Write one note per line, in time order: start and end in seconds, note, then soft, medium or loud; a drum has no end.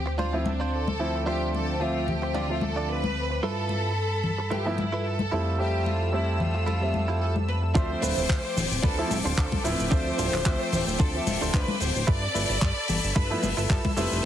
0.00 3.41 D2 medium
0.00 3.39 C4 medium
0.00 0.15 G4 loud
0.00 3.39 D6 medium
0.06 muted clean electric guitar stroke medium
0.18 0.33 D4 medium
0.18 0.34 F4 medium
0.18 0.46 F4 medium
0.18 0.34 C5 medium
0.18 muted conga soft
0.33 0.49 F3 medium
0.33 0.49 A3 medium
0.33 0.50 C4 medium
0.33 0.50 E4 medium
0.45 0.73 D4 medium
0.45 muted clean electric guitar stroke soft
0.45 muted conga soft
0.45 high conga medium
0.60 0.87 D4 medium
0.60 0.88 F4 medium
0.60 0.88 C5 medium
0.73 1.27 A4 loud
0.88 muted conga soft
0.88 high conga medium
0.99 1.24 F3 medium
0.99 1.24 A3 medium
0.99 1.24 C4 medium
0.99 1.24 E4 medium
1.14 muted clean electric guitar stroke soft
1.26 1.78 F3 medium
1.26 1.78 A3 medium
1.26 1.78 C4 medium
1.26 1.75 D4 loud
1.26 1.75 F4 medium
1.26 1.52 G4 loud
1.26 1.75 C5 loud
1.26 1.78 E5 medium
1.54 1.79 A4 loud
1.54 muted conga soft
1.80 2.46 F3 medium
1.80 2.46 A3 medium
1.80 2.46 C4 medium
1.80 2.08 F4 medium
1.80 2.47 E5 medium
2.08 2.35 G4 medium
2.08 low conga medium
2.22 muted clean electric guitar stroke medium
2.34 2.50 D4 medium
2.34 2.50 F4 medium
2.34 2.62 F4 medium
2.34 2.50 G4 medium
2.34 muted conga soft
2.49 3.41 F3 medium
2.49 3.41 A3 medium
2.49 3.42 C4 medium
2.49 3.42 E5 medium
2.61 2.89 A4 loud
2.61 muted clean electric guitar stroke soft
2.61 high conga medium
2.76 3.03 D4 medium
2.76 3.04 F4 medium
2.76 3.04 D5 medium
2.89 3.43 B4 loud
3.04 high conga medium
3.30 muted clean electric guitar stroke soft
3.43 5.30 G2 medium
3.43 3.91 E4 medium
3.43 3.91 F4 loud
3.43 5.30 A4 medium
3.43 3.91 A4 medium
3.43 4.51 A4 loud
3.43 3.91 B4 loud
3.43 5.31 B5 medium
3.43 7.72 E6 medium
3.69 muted conga soft
4.24 low conga medium
4.38 muted clean electric guitar stroke medium
4.50 4.66 E4 medium
4.50 4.66 F4 medium
4.50 4.78 G4 medium
4.50 4.66 A4 medium
4.50 4.66 B4 medium
4.50 muted conga soft
4.66 4.82 F3 medium
4.66 4.82 A3 medium
4.66 4.82 B3 medium
4.66 4.82 E4 loud
4.78 5.05 E4 medium
4.78 muted clean electric guitar stroke soft
4.78 muted conga soft
4.78 high conga medium
4.92 5.20 E4 medium
4.92 5.20 F4 medium
4.92 5.20 A4 medium
4.92 5.20 B4 medium
5.05 5.59 A4 loud
5.19 muted conga soft
5.19 high conga medium
5.31 7.73 F2 medium
5.31 5.56 G3 medium
5.31 5.56 A3 medium
5.31 5.56 C4 medium
5.31 6.19 E4 medium
5.31 5.57 E4 loud
5.31 6.19 F4 medium
5.31 7.73 A4 medium
5.31 6.20 A4 medium
5.59 6.10 G3 medium
5.59 6.10 A3 medium
5.59 6.10 C4 medium
5.59 5.84 G4 loud
5.59 6.11 E5 medium
5.86 6.14 F4 medium
5.86 muted conga soft
6.12 6.78 G3 medium
6.12 6.78 A3 medium
6.12 6.79 C4 medium
6.12 6.39 E4 medium
6.12 6.79 E5 medium
6.40 7.22 F4 medium
6.40 low conga medium
6.54 muted clean electric guitar stroke medium
6.66 6.82 E4 medium
6.66 6.82 F4 medium
6.66 6.82 A4 medium
6.66 muted conga soft
6.81 7.73 G3 medium
6.81 7.73 A3 medium
6.81 7.74 C4 medium
6.81 7.75 E5 medium
6.94 muted clean electric guitar stroke soft
6.94 high conga medium
7.08 7.36 E4 medium
7.08 7.36 F4 medium
7.08 7.36 G4 medium
7.21 7.33 A4 medium
7.36 high conga medium
7.48 7.61 B4 medium
7.48 muted conga soft
7.62 muted clean electric guitar stroke soft
7.74 7.95 D2 loud
7.74 8.56 F3 loud
7.74 8.56 A3 medium
7.74 12.04 C4 medium
7.74 8.57 C4 medium
7.74 7.90 D4 loud
7.74 7.90 F4 loud
7.74 7.90 A4 loud
7.74 8.79 C5 loud
7.74 7.91 C5 loud
7.74 8.57 E5 loud
7.74 12.04 D6 medium
7.74 kick loud
7.74 cabasa medium
8.01 8.13 D1 loud
8.01 8.23 D4 medium
8.01 8.23 F4 medium
8.01 8.23 A4 medium
8.01 8.24 B4 loud
8.01 open hi-hat loud
8.01 muted conga soft
8.01 cabasa medium
8.18 8.26 D1 medium
8.18 cabasa medium
8.29 8.40 D2 medium
8.29 kick loud
8.29 clap loud
8.29 cabasa soft
8.44 muted clean electric guitar stroke soft
8.57 8.67 D1 loud
8.57 open hi-hat loud
8.57 low conga medium
8.57 cabasa loud
8.71 8.80 D1 loud
8.71 cabasa medium
8.82 9.03 D2 medium
8.82 8.98 D4 medium
8.82 8.98 F4 medium
8.82 8.98 A4 medium
8.82 9.36 A4 loud
8.82 8.99 B4 medium
8.82 kick loud
8.82 muted conga soft
8.82 cabasa soft
8.98 9.14 F3 loud
8.98 9.14 A3 medium
8.98 9.15 C4 medium
8.98 9.15 E4 loud
9.10 9.21 D1 medium
9.10 muted clean electric guitar stroke soft
9.10 open hi-hat loud
9.10 muted conga medium
9.10 high conga medium
9.10 cabasa loud
9.24 9.34 D1 loud
9.24 9.58 D4 medium
9.24 9.58 F4 medium
9.24 9.59 A4 medium
9.24 9.59 C5 loud
9.24 cabasa medium
9.37 9.48 D2 medium
9.37 9.63 A4 loud
9.37 kick loud
9.37 clap loud
9.37 cabasa soft
9.52 kick medium
9.52 muted conga soft
9.52 high conga medium
9.64 9.75 D1 medium
9.64 9.88 F3 loud
9.64 9.89 A3 medium
9.64 9.89 C4 medium
9.64 9.89 E4 loud
9.64 9.91 B4 loud
9.64 open hi-hat loud
9.64 cabasa medium
9.80 9.88 D1 medium
9.80 cabasa medium
9.91 10.11 D2 loud
9.91 10.43 F3 medium
9.91 10.43 A3 medium
9.91 10.43 C4 medium
9.91 10.06 D4 loud
9.91 10.06 F4 loud
9.91 10.07 A4 loud
9.91 11.00 C5 loud
9.91 10.07 C5 loud
9.91 10.43 E5 loud
9.91 kick loud
9.91 cabasa medium
10.18 10.29 D1 medium
10.18 10.39 D4 medium
10.18 10.40 F4 medium
10.18 10.40 A4 medium
10.18 10.40 C5 loud
10.18 open hi-hat loud
10.18 muted conga soft
10.18 cabasa medium
10.34 10.42 D1 medium
10.34 clap soft
10.34 cabasa medium
10.45 10.56 D2 medium
10.45 11.11 F3 medium
10.45 11.11 A3 medium
10.45 11.11 C4 medium
10.45 11.12 E5 loud
10.45 kick loud
10.45 clap loud
10.45 cabasa medium
10.60 muted clean electric guitar stroke soft
10.73 10.83 D1 loud
10.73 open hi-hat loud
10.73 low conga medium
10.73 cabasa medium
10.88 10.96 D1 medium
10.88 cabasa medium
10.99 11.20 D2 medium
10.99 11.14 D4 medium
10.99 11.15 F4 medium
10.99 11.54 A4 loud
10.99 11.15 A4 medium
10.99 11.15 C5 medium
10.99 kick loud
10.99 muted conga medium
10.99 cabasa medium
11.14 12.06 F3 medium
11.14 12.06 A3 medium
11.14 12.07 C4 medium
11.14 12.07 E5 medium
11.27 11.37 D1 medium
11.27 muted clean electric guitar stroke soft
11.27 open hi-hat loud
11.27 high conga medium
11.27 cabasa loud
11.41 11.50 D1 loud
11.41 11.74 D4 medium
11.41 11.75 F4 medium
11.41 11.75 A4 medium
11.41 11.75 C5 loud
11.41 cabasa medium
11.53 11.64 D2 medium
11.53 11.81 B4 loud
11.53 kick loud
11.53 clap loud
11.53 cabasa medium
11.68 high conga medium
11.80 11.91 D1 loud
11.80 12.08 C5 loud
11.80 open hi-hat loud
11.80 cabasa medium
11.96 12.04 D1 medium
11.96 cabasa medium
12.07 12.28 G2 loud
12.07 12.22 E4 loud
12.07 12.23 F4 loud
12.07 14.25 A4 medium
12.07 12.23 A4 medium
12.07 12.23 B4 loud
12.07 13.16 D5 loud
12.07 13.95 B5 medium
12.07 14.25 E6 loud
12.07 kick loud
12.07 cabasa soft
12.34 12.45 G1 medium
12.34 12.56 E4 medium
12.34 12.56 F4 medium
12.34 12.56 A4 medium
12.34 12.56 B4 loud
12.34 open hi-hat loud
12.34 muted conga soft
12.34 cabasa medium
12.50 12.58 G1 medium
12.50 cabasa medium
12.62 12.72 G2 medium
12.62 kick loud
12.62 clap loud
12.62 cabasa medium
12.76 muted clean electric guitar stroke soft
12.88 12.99 G1 loud
12.88 open hi-hat loud
12.88 low conga medium
12.88 cabasa medium
13.04 13.12 G1 loud
13.04 cabasa medium
13.15 13.36 G2 medium
13.15 13.31 E4 medium
13.15 13.31 F4 medium
13.15 13.31 A4 medium
13.15 13.66 B4 loud
13.15 13.31 B4 medium
13.15 kick loud
13.15 muted conga soft
13.15 cabasa medium
13.30 13.47 F3 loud
13.30 13.47 A3 medium
13.30 13.47 B3 medium
13.30 13.47 E4 loud
13.43 13.53 G1 medium
13.43 muted clean electric guitar stroke soft
13.43 open hi-hat loud
13.43 muted conga medium
13.43 high conga medium
13.43 cabasa medium
13.57 13.66 G1 loud
13.57 13.91 E4 medium
13.57 13.91 F4 medium
13.57 13.91 A4 medium
13.57 13.91 B4 loud
13.57 cabasa medium
13.69 13.80 G2 medium
13.69 13.82 A4 loud
13.69 kick loud
13.69 clap loud
13.69 cabasa medium
13.85 kick medium
13.85 muted conga soft
13.85 high conga medium
13.97 14.07 F1 medium
13.97 14.21 G3 medium
13.97 14.21 A3 medium
13.97 14.21 C4 medium
13.97 14.25 E4 medium
13.97 14.21 E4 loud
13.97 14.25 F4 medium
13.97 14.25 A4 medium
13.97 14.22 B4 loud
13.97 14.25 C5 medium
13.97 open hi-hat loud
13.97 cabasa medium
14.12 14.21 F1 medium
14.12 cabasa medium